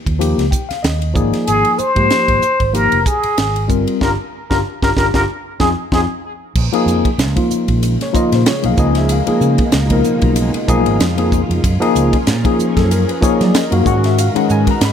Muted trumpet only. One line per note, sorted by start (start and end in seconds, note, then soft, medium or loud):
1.46 1.80 G#4 medium
1.79 2.75 C5 loud
2.74 3.08 A#4 medium
3.07 3.70 G#4 medium
4.01 4.10 A#4 medium
4.50 4.57 A#4 medium
4.83 4.90 A#4 medium
4.97 5.06 A#4 medium
5.15 5.21 A#4 medium
5.60 5.69 G#4 medium
5.93 6.01 G#4 medium